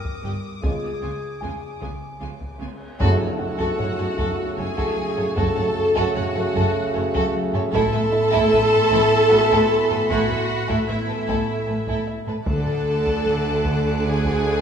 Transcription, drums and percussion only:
0.05 taiko
0.64 taiko
1.42 taiko low
1.82 taiko
2.41 taiko
3.00 taiko, tam-tam
3.20 taiko low-mid
3.60 taiko
3.80 taiko low-mid
4.19 taiko
4.78 taiko
5.18 taiko low-mid
5.37 taiko
5.57 taiko low-mid
5.97 taiko
6.17 taiko low-mid
6.56 taiko
7.15 taiko
7.55 taiko low-mid
7.74 taiko
7.94 taiko low-mid
8.33 taiko
8.53 taiko low-mid
8.92 taiko
9.51 taiko
9.91 taiko low-mid
10.10 taiko
10.30 taiko low-mid
10.70 taiko
10.89 taiko low-mid
11.28 taiko
11.88 taiko
12.27 taiko low-mid
12.46 taiko
12.66 taiko low-mid
13.06 taiko
13.25 taiko low-mid
13.65 taiko
14.24 taiko

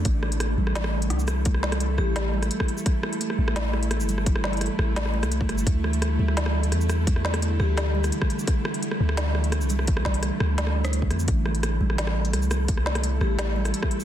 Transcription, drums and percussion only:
0.05 kick, closed hi-hat
0.23 cross-stick
0.32 closed hi-hat
0.40 cross-stick, closed hi-hat
0.67 cross-stick
0.75 snare, closed hi-hat
0.84 cross-stick
1.02 closed hi-hat
1.10 cross-stick, closed hi-hat
1.19 shaker
1.28 cross-stick, closed hi-hat, shaker
1.45 kick, closed hi-hat
1.54 cross-stick
1.63 snare
1.72 cross-stick, closed hi-hat
1.80 closed hi-hat
1.98 cross-stick
2.16 cross-stick, snare, closed hi-hat
2.43 cross-stick, closed hi-hat, shaker
2.51 closed hi-hat
2.60 kick, cross-stick
2.68 closed hi-hat
2.78 shaker
2.86 kick, cross-stick, closed hi-hat
3.03 cross-stick
3.13 closed hi-hat
3.21 closed hi-hat
3.30 cross-stick
3.48 cross-stick
3.56 snare, closed hi-hat
3.73 cross-stick
3.83 closed hi-hat
3.91 cross-stick, closed hi-hat
4.00 shaker
4.09 closed hi-hat, shaker
4.18 cross-stick
4.26 kick, closed hi-hat
4.36 cross-stick
4.44 snare
4.53 closed hi-hat
4.57 closed hi-hat
4.61 cross-stick, closed hi-hat
4.66 closed hi-hat
4.79 cross-stick
4.96 snare, closed hi-hat
5.06 cross-stick
5.23 cross-stick, closed hi-hat, shaker
5.32 closed hi-hat
5.41 kick
5.49 cross-stick, closed hi-hat
5.58 shaker
5.67 kick, closed hi-hat
5.84 cross-stick
5.93 closed hi-hat
6.02 cross-stick, closed hi-hat
6.28 cross-stick
6.37 snare, closed hi-hat
6.46 cross-stick
6.63 closed hi-hat
6.72 cross-stick, closed hi-hat
6.81 shaker
6.89 cross-stick, closed hi-hat, shaker
7.07 kick, closed hi-hat
7.16 cross-stick
7.25 snare
7.34 cross-stick, closed hi-hat
7.42 closed hi-hat
7.60 cross-stick
7.77 cross-stick, snare, closed hi-hat
8.04 cross-stick, closed hi-hat, shaker
8.12 closed hi-hat
8.22 kick, cross-stick
8.30 closed hi-hat
8.39 shaker
8.47 kick, cross-stick, closed hi-hat
8.65 cross-stick
8.74 closed hi-hat
8.83 closed hi-hat
8.91 cross-stick
9.09 cross-stick
9.17 snare, closed hi-hat
9.35 cross-stick
9.44 closed hi-hat
9.52 cross-stick, closed hi-hat
9.61 shaker
9.70 closed hi-hat, shaker
9.79 cross-stick
9.87 kick, closed hi-hat
9.97 cross-stick
10.05 kick, snare
10.14 closed hi-hat
10.23 cross-stick, closed hi-hat
10.40 cross-stick
10.58 snare, closed hi-hat
10.67 cross-stick
10.85 cross-stick, closed hi-hat, shaker
10.93 closed hi-hat
11.02 kick
11.11 cross-stick, closed hi-hat
11.19 shaker
11.28 kick, closed hi-hat
11.46 cross-stick
11.55 closed hi-hat
11.63 cross-stick, closed hi-hat
11.90 cross-stick
11.98 snare, closed hi-hat
12.07 cross-stick
12.25 closed hi-hat
12.33 cross-stick, closed hi-hat
12.42 shaker
12.51 cross-stick, closed hi-hat, shaker
12.68 kick, closed hi-hat
12.77 cross-stick
12.86 snare
12.95 cross-stick, closed hi-hat
13.04 closed hi-hat
13.21 cross-stick
13.39 cross-stick, snare, closed hi-hat
13.65 cross-stick, closed hi-hat, shaker
13.74 closed hi-hat
13.83 kick, cross-stick
13.91 closed hi-hat
14.00 shaker

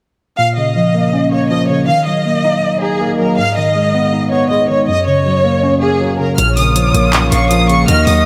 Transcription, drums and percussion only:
6.38 closed hi-hat
6.57 open hi-hat
6.76 closed hi-hat
6.94 closed hi-hat
7.13 clap, closed hi-hat
7.32 closed hi-hat
7.51 closed hi-hat
7.69 closed hi-hat
7.88 closed hi-hat
8.07 open hi-hat

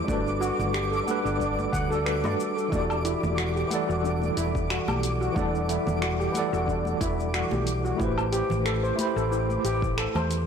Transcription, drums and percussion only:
0.08 kick, high conga, cabasa
0.27 cabasa
0.42 cabasa
0.60 high conga, low conga, cabasa
0.74 finger snap, cabasa
0.93 cabasa
1.08 high conga, cabasa
1.26 cabasa
1.40 kick, cabasa
1.59 high conga, cabasa
1.73 kick, cabasa
1.92 cabasa
2.06 finger snap, cabasa
2.24 high conga, low conga, cabasa
2.40 cabasa
2.58 cabasa
2.72 kick, high conga, cabasa
2.90 cabasa, low woodblock
3.05 closed hi-hat, cabasa
3.23 high conga, low conga, cabasa
3.38 finger snap, cabasa
3.57 cabasa
3.71 closed hi-hat, high conga, cabasa
3.90 cabasa
4.05 cabasa
4.22 high conga, cabasa
4.37 closed hi-hat, cabasa
4.55 kick, cabasa
4.70 finger snap, cabasa
4.88 high conga, low conga, cabasa, low woodblock
5.03 closed hi-hat, cabasa
5.22 cabasa
5.36 kick, high conga, cabasa
5.55 cabasa
5.69 closed hi-hat, cabasa
5.87 high conga, low conga, cabasa
6.02 finger snap, cabasa
6.21 cabasa
6.34 closed hi-hat, high conga, cabasa
6.54 cabasa
6.68 kick, cabasa
6.85 high conga, cabasa
7.01 kick, closed hi-hat, cabasa
7.20 cabasa
7.34 finger snap, cabasa
7.51 high conga, low conga, cabasa
7.67 closed hi-hat, cabasa
7.85 cabasa
7.99 kick, high conga, cabasa
8.18 cabasa, low woodblock
8.33 closed hi-hat, cabasa
8.50 high conga, low conga, cabasa
8.66 finger snap, cabasa
8.84 cabasa
8.99 closed hi-hat, high conga, cabasa
9.17 cabasa
9.32 cabasa
9.50 high conga, cabasa
9.65 closed hi-hat, cabasa
9.82 kick, cabasa
9.98 finger snap, cabasa
10.15 high conga, low conga, cabasa, low woodblock
10.31 closed hi-hat, cabasa

